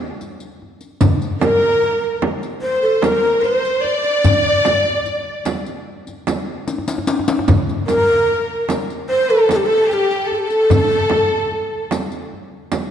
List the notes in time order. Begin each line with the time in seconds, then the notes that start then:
0.21 riq, tombak ka
0.40 riq
0.62 tombak ka
0.81 riq
1.01 riq, frame drum, tombak dum
1.22 riq
1.41 A#4, riq, tombak tek, frame drum
1.82 tombak ka
2.22 tombak tek, frame drum
2.43 riq
2.62 C5, tombak ka
2.82 A4
3.02 A#4, riq, tombak tek, frame drum
3.41 C5, riq, tombak ka
3.65 riq
3.81 D5, tombak ka
4.04 riq
4.24 riq, frame drum, tombak dum
4.65 riq, tombak tek, frame drum
5.05 riq, tombak ka
5.45 riq, tombak tek, frame drum
5.66 riq, tombak ka
6.07 riq, tombak ka
6.27 riq, tombak tek, frame drum
6.67 riq, tombak tek
6.78 tombak ka
6.88 riq, tombak tek
6.98 tombak ka
7.07 riq, tombak tek
7.19 tombak ka
7.28 riq, tombak tek
7.39 tombak ka
7.48 riq, frame drum, tombak dum
7.69 riq
7.87 A#4, riq, tombak tek, frame drum
8.32 tombak ka
8.69 riq, tombak tek, frame drum
8.90 riq
9.09 C5, tombak ka
9.28 A4
9.49 A4, riq, tombak tek, frame drum
9.56 G4
9.63 A4
9.89 G4, riq, tombak ka
9.93 G4
10.11 riq
10.29 A4, tombak ka
10.35 A4
10.39 G4
10.44 A4
10.50 riq
10.70 riq, frame drum, tombak dum
10.91 riq
11.10 tombak tek, frame drum
11.52 tombak ka
11.91 riq, tombak tek, frame drum
12.12 riq
12.33 tombak ka
12.72 riq, tombak tek, frame drum